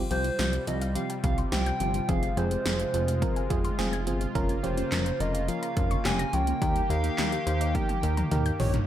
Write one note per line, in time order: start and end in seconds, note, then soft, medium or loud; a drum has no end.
0.00 4.31 C3 medium
0.00 2.07 G3 medium
0.00 6.58 F4 loud
0.11 0.30 C2 loud
0.11 0.19 F3 medium
0.11 0.31 C4 medium
0.11 0.31 F4 medium
0.11 0.31 G4 loud
0.11 0.63 C5 medium
0.11 closed hi-hat medium
0.24 0.33 C4 medium
0.24 closed hi-hat medium
0.39 0.59 C2 loud
0.39 0.47 F3 medium
0.39 0.59 C4 medium
0.39 0.59 F4 medium
0.39 0.59 G4 medium
0.39 snare loud
0.39 closed hi-hat medium
0.53 0.61 G4 medium
0.53 closed hi-hat medium
0.67 0.97 C2 loud
0.67 0.75 F3 medium
0.67 0.88 C4 medium
0.67 0.88 F4 medium
0.67 0.88 G4 medium
0.67 0.94 D#5 medium
0.67 closed hi-hat medium
0.82 0.90 F5 medium
0.82 closed hi-hat medium
0.95 1.04 F3 medium
0.95 1.16 C4 medium
0.95 1.16 F4 medium
0.95 1.16 G4 medium
0.95 1.08 F5 loud
0.95 closed hi-hat medium
1.10 1.18 G5 medium
1.10 closed hi-hat soft
1.24 1.44 C2 loud
1.24 1.32 F3 medium
1.24 1.44 C4 medium
1.24 1.44 F4 medium
1.24 1.44 G4 medium
1.24 1.37 F5 loud
1.24 kick medium
1.24 closed hi-hat medium
1.38 1.46 C6 medium
1.38 closed hi-hat medium
1.52 1.72 C2 medium
1.52 1.60 F3 medium
1.52 1.73 C4 loud
1.52 1.73 F4 medium
1.52 1.73 G4 loud
1.52 2.11 G5 loud
1.52 snare loud
1.52 closed hi-hat medium
1.66 1.74 G6 medium
1.66 closed hi-hat medium
1.80 2.00 G1 medium
1.80 1.89 F3 medium
1.80 2.01 C4 medium
1.80 2.01 F4 medium
1.80 2.01 G4 medium
1.80 closed hi-hat medium
1.94 2.03 G3 medium
1.94 closed hi-hat medium
2.09 2.29 F1 loud
2.09 2.17 F3 medium
2.09 4.33 G#3 medium
2.09 2.29 C4 loud
2.09 2.29 F4 medium
2.09 2.29 G#4 loud
2.09 2.39 F5 loud
2.09 kick loud
2.09 closed hi-hat medium
2.23 2.31 G#3 medium
2.23 closed hi-hat medium
2.37 2.57 F1 loud
2.37 2.45 F3 medium
2.37 2.58 C4 loud
2.37 2.58 F4 medium
2.37 2.58 G#4 loud
2.37 3.50 C5 medium
2.37 closed hi-hat medium
2.51 2.59 C4 medium
2.51 closed hi-hat medium
2.65 2.85 F1 loud
2.65 2.74 F3 medium
2.65 2.86 C4 medium
2.65 2.86 F4 medium
2.65 2.86 G#4 medium
2.65 snare loud
2.65 closed hi-hat medium
2.80 2.88 G#4 medium
2.80 closed hi-hat medium
2.94 3.23 F1 loud
2.94 3.02 F3 medium
2.94 3.14 C4 medium
2.94 3.14 F4 medium
2.94 3.14 G#4 medium
2.94 closed hi-hat medium
3.08 3.16 F5 medium
3.08 closed hi-hat medium
3.22 3.30 F3 medium
3.22 3.43 C4 medium
3.22 3.43 F4 medium
3.22 3.43 A#4 loud
3.22 kick medium
3.22 closed hi-hat medium
3.36 3.44 G#5 medium
3.36 closed hi-hat soft
3.50 3.70 F1 medium
3.50 3.58 F3 medium
3.50 3.71 C4 medium
3.50 3.71 F4 medium
3.50 3.71 G#4 loud
3.50 kick medium
3.50 closed hi-hat medium
3.64 3.73 C6 medium
3.64 closed hi-hat medium
3.79 4.08 F1 loud
3.79 3.87 F3 medium
3.79 3.99 C4 loud
3.79 3.99 F4 loud
3.79 3.99 G#4 loud
3.79 snare loud
3.79 closed hi-hat medium
3.93 4.01 G#6 medium
3.93 closed hi-hat medium
4.07 4.27 G1 loud
4.07 4.15 F3 medium
4.07 4.27 C4 medium
4.07 4.27 F4 medium
4.07 4.27 G#4 loud
4.07 closed hi-hat medium
4.21 4.29 G#3 medium
4.21 closed hi-hat soft
4.35 4.55 F1 loud
4.35 6.59 C#3 medium
4.35 4.43 F3 medium
4.35 8.84 A#3 medium
4.35 4.56 C#4 loud
4.35 4.56 F4 loud
4.35 4.56 A#4 loud
4.35 kick loud
4.35 closed hi-hat medium
4.49 4.57 A#3 medium
4.49 closed hi-hat medium
4.63 4.83 F1 loud
4.63 4.72 F3 medium
4.63 4.84 C#4 loud
4.63 4.84 F4 medium
4.63 4.84 G4 loud
4.63 5.22 C5 medium
4.63 closed hi-hat medium
4.77 4.86 C#4 medium
4.77 closed hi-hat medium
4.92 5.12 F1 loud
4.92 5.00 F3 medium
4.92 5.12 C#4 medium
4.92 5.12 F4 medium
4.92 5.12 A#4 medium
4.92 snare loud
4.92 clap loud
4.92 closed hi-hat medium
5.06 5.14 A#4 medium
5.06 closed hi-hat medium
5.20 5.50 F1 loud
5.20 5.28 F3 medium
5.20 5.41 C#4 medium
5.20 5.41 F4 medium
5.20 5.41 A#4 medium
5.20 5.48 D#5 medium
5.20 closed hi-hat medium
5.34 5.42 F5 medium
5.34 closed hi-hat medium
5.48 5.56 F3 medium
5.48 5.69 C#4 medium
5.48 5.69 F4 medium
5.48 5.69 A#4 medium
5.48 5.75 F5 loud
5.48 closed hi-hat medium
5.63 5.71 A#5 medium
5.63 closed hi-hat medium
5.77 5.96 F1 loud
5.77 5.85 F3 medium
5.77 5.97 C#4 medium
5.77 5.97 F4 medium
5.77 5.97 A#4 medium
5.77 6.07 F5 loud
5.77 kick loud
5.77 closed hi-hat medium
5.91 5.99 C#6 medium
5.91 closed hi-hat medium
6.05 6.25 F1 loud
6.05 6.13 F3 medium
6.05 6.26 C#4 loud
6.05 6.26 F4 medium
6.05 6.26 G4 loud
6.05 6.35 G#5 loud
6.05 snare loud
6.05 clap medium
6.05 closed hi-hat medium
6.19 6.27 A#6 medium
6.19 closed hi-hat medium
6.33 6.53 C#2 medium
6.33 6.41 F3 medium
6.33 6.54 C#4 medium
6.33 6.54 F4 medium
6.33 6.54 C#5 medium
6.33 6.90 G5 loud
6.33 closed hi-hat medium
6.47 6.55 A#3 medium
6.47 closed hi-hat soft
6.62 6.82 D#2 loud
6.62 6.70 D#3 medium
6.62 8.86 D#3 medium
6.62 6.82 D#4 loud
6.62 8.86 G4 medium
6.62 6.82 G4 medium
6.62 6.82 A#4 loud
6.62 kick loud
6.62 closed hi-hat medium
6.76 6.84 G3 medium
6.76 closed hi-hat medium
6.90 7.10 D#2 loud
6.90 6.98 D#3 medium
6.90 7.11 D#4 loud
6.90 7.11 G4 medium
6.90 7.11 A#4 loud
6.90 7.77 F5 loud
6.90 closed hi-hat medium
7.04 7.12 A#3 medium
7.04 closed hi-hat medium
7.18 7.38 D#2 loud
7.18 7.26 D#3 medium
7.18 7.39 D#4 medium
7.18 7.39 G4 medium
7.18 7.39 A#4 medium
7.18 snare loud
7.18 clap loud
7.18 closed hi-hat medium
7.32 7.40 G4 medium
7.32 closed hi-hat medium
7.46 7.76 D#2 loud
7.46 7.55 D#3 medium
7.46 7.67 D#4 medium
7.46 7.67 G4 medium
7.46 7.67 C5 medium
7.46 closed hi-hat medium
7.61 7.69 D#5 medium
7.61 closed hi-hat medium
7.75 7.83 D#3 medium
7.75 7.95 D#4 medium
7.75 7.95 G4 medium
7.75 7.95 A#4 medium
7.75 8.60 G5 loud
7.75 kick medium
7.75 closed hi-hat medium
7.75 high tom medium
7.89 7.97 G5 medium
7.89 closed hi-hat medium
7.89 high tom medium
8.03 8.23 D#2 loud
8.03 8.11 D#3 medium
8.03 8.24 D#4 medium
8.03 8.24 G4 medium
8.03 8.24 A#4 medium
8.03 closed hi-hat medium
8.17 8.25 A#5 medium
8.17 closed hi-hat medium
8.17 mid tom medium
8.31 8.51 D#2 medium
8.31 8.39 D#3 medium
8.31 8.52 D#4 loud
8.31 8.52 G4 medium
8.31 8.52 A#4 loud
8.31 closed hi-hat medium
8.31 mid tom medium
8.46 8.54 G6 medium
8.46 closed hi-hat medium
8.60 8.80 A#1 loud
8.60 8.68 D#3 medium
8.60 8.80 D#4 medium
8.60 8.80 G4 medium
8.60 8.80 C#5 loud
8.60 8.73 C#5 loud
8.60 floor tom loud
8.60 open hi-hat medium
8.74 8.82 G3 medium
8.74 closed hi-hat medium
8.74 floor tom medium